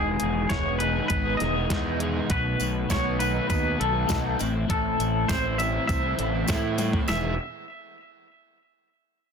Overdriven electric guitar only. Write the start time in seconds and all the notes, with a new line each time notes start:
Already playing: G#3 B3 D#4
0.51 B3
0.81 D#4
1.10 B3
1.40 G#3
1.70 D#4
2.00 G#3
2.30 B2
2.90 B3
3.20 D#4
3.50 B3
3.80 F#3
4.10 D#4
4.40 A2
4.69 A2
5.30 C4
5.60 E4
5.89 C4
6.19 A3
6.50 E4
6.80 A3
7.09 E3 G#3 B3 E4